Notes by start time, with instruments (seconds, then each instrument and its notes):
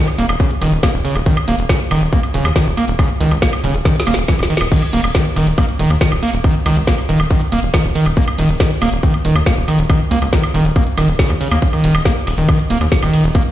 0.08 high woodblock
0.18 analog synth bass D#1, acid bass A#3, open hi-hat
0.29 analog synth bass D#1, closed hi-hat, high woodblock
0.40 acid bass C#3, kick, closed hi-hat
0.51 closed hi-hat
0.62 analog synth bass D#1, acid bass D#3, open hi-hat, high woodblock
0.72 analog synth bass D#1, closed hi-hat
0.83 acid bass A#3, kick, snare, closed hi-hat, high woodblock
0.94 analog synth bass D#1
1.05 acid bass C#3, open hi-hat
1.16 analog synth bass D#1, closed hi-hat, high woodblock
1.26 acid bass D#3, kick, closed hi-hat
1.37 high woodblock
1.48 analog synth bass D#1, acid bass A#3, open hi-hat
1.59 analog synth bass D#1, closed hi-hat
1.69 acid bass C#3, kick, snare, closed hi-hat, high woodblock
1.91 analog synth bass D#1, acid bass D#3, open hi-hat, high woodblock
2.02 analog synth bass D#1, closed hi-hat
2.13 acid bass A#3, kick, closed hi-hat
2.23 closed hi-hat, high woodblock
2.34 analog synth bass D#1, acid bass C#3, open hi-hat
2.45 analog synth bass D#2, closed hi-hat, high woodblock
2.56 acid bass D#3, kick, snare, closed hi-hat
2.67 analog synth bass D#1
2.77 acid bass A#3, open hi-hat, high woodblock
2.88 analog synth bass D#1, closed hi-hat
2.99 acid bass C#3, kick, closed hi-hat, high woodblock
3.21 analog synth bass C#2, acid bass D#3, open hi-hat
3.31 analog synth bass C#2, closed hi-hat, high woodblock
3.42 acid bass A#3, kick, snare, closed hi-hat
3.53 closed hi-hat, high woodblock
3.64 analog synth bass D#1, acid bass C#3, open hi-hat
3.74 analog synth bass D#1, closed hi-hat
3.85 acid bass D#3, kick, snare, closed hi-hat, high woodblock
3.96 snare, closed hi-hat
4.07 analog synth bass D#1, acid bass A#3, open hi-hat, high woodblock
4.14 analog synth bass D#1, snare, closed hi-hat
4.28 acid bass E3, kick, snare, closed hi-hat
4.39 analog synth bass D#1, snare, closed hi-hat, high woodblock
4.50 acid bass D#3, open hi-hat
4.57 analog synth bass D#1, snare, closed hi-hat, high woodblock
4.72 acid bass D#3, kick, closed hi-hat, crash
4.82 high woodblock
4.93 analog synth bass D#1, acid bass A#3, open hi-hat
5.04 analog synth bass D#1, closed hi-hat, high woodblock
5.15 acid bass D#3, kick, snare, closed hi-hat
5.36 analog synth bass D#1, acid bass D#3, open hi-hat, high woodblock
5.47 analog synth bass D#1, closed hi-hat
5.58 acid bass A#3, kick, closed hi-hat, high woodblock
5.69 closed hi-hat
5.79 analog synth bass D#1, acid bass D#3, open hi-hat
5.90 analog synth bass D#2, closed hi-hat, high woodblock
6.01 acid bass D#3, kick, snare, closed hi-hat
6.12 analog synth bass D#1, high woodblock
6.23 acid bass A#3, open hi-hat
6.33 analog synth bass D#1, closed hi-hat
6.44 acid bass D#3, kick, closed hi-hat, high woodblock
6.66 analog synth bass C#2, acid bass D#3, open hi-hat, high woodblock
6.77 analog synth bass C#2, closed hi-hat
6.87 acid bass A#3, kick, snare, closed hi-hat
6.98 high woodblock
7.09 analog synth bass D#1, acid bass D#3, open hi-hat
7.20 analog synth bass D#1, closed hi-hat, high woodblock
7.31 acid bass D#3, kick, closed hi-hat
7.41 closed hi-hat
7.52 analog synth bass D#1, acid bass A#3, open hi-hat, high woodblock
7.63 analog synth bass D#1, closed hi-hat
7.74 acid bass D#3, kick, snare, closed hi-hat, high woodblock
7.85 analog synth bass D#1
7.95 acid bass D#3, open hi-hat
8.06 analog synth bass D#1, closed hi-hat, high woodblock
8.17 acid bass A#3, kick, closed hi-hat
8.28 high woodblock
8.38 analog synth bass D#1, acid bass D#3, open hi-hat
8.49 analog synth bass D#1, closed hi-hat
8.60 acid bass D#3, kick, snare, closed hi-hat, high woodblock
8.82 analog synth bass D#1, acid bass A#3, open hi-hat, high woodblock
8.92 analog synth bass D#1, closed hi-hat
9.03 acid bass D#3, kick, closed hi-hat
9.14 closed hi-hat, high woodblock
9.25 analog synth bass D#1, acid bass D#3, open hi-hat
9.36 analog synth bass D#2, closed hi-hat, high woodblock
9.46 acid bass A#3, kick, snare, closed hi-hat
9.57 analog synth bass D#1
9.68 acid bass D#3, open hi-hat, high woodblock
9.79 analog synth bass D#1, closed hi-hat
9.90 acid bass D#3, kick, closed hi-hat, high woodblock
10.11 analog synth bass C#2, acid bass A#3, open hi-hat
10.22 analog synth bass C#2, closed hi-hat, high woodblock
10.33 acid bass D#3, kick, snare, closed hi-hat
10.44 high woodblock
10.54 analog synth bass D#1, acid bass D#3, open hi-hat
10.65 analog synth bass D#1, closed hi-hat
10.76 acid bass A#3, kick, closed hi-hat, high woodblock
10.87 closed hi-hat
10.97 analog synth bass D#1, acid bass D#3, open hi-hat, high woodblock
11.08 analog synth bass D#1, closed hi-hat
11.19 acid bass C#3, kick, snare, closed hi-hat
11.30 analog synth bass D#2, high woodblock
11.41 acid bass C#3, open hi-hat
11.51 analog synth bass D#2, acid bass A#3, closed hi-hat, high woodblock
11.62 kick, closed hi-hat, ride
11.73 acid bass D#3, high woodblock
11.84 analog synth bass D#1, acid bass D#3, open hi-hat, ride
11.95 analog synth bass D#1, closed hi-hat, high woodblock
12.05 acid bass A#3, kick, snare, closed hi-hat, ride
12.27 analog synth bass D#1, open hi-hat, ride, high woodblock
12.38 analog synth bass D#1, acid bass D#3, closed hi-hat
12.49 acid bass D#3, kick, closed hi-hat, ride, high woodblock
12.59 closed hi-hat
12.70 analog synth bass D#1, acid bass A#3, open hi-hat, ride
12.81 analog synth bass D#2, closed hi-hat, high woodblock
12.92 kick, snare, closed hi-hat, ride
13.03 analog synth bass D#1, acid bass D#3, high woodblock
13.13 acid bass D#3, open hi-hat, ride
13.24 analog synth bass D#1, closed hi-hat
13.35 acid bass A#3, kick, closed hi-hat, ride, high woodblock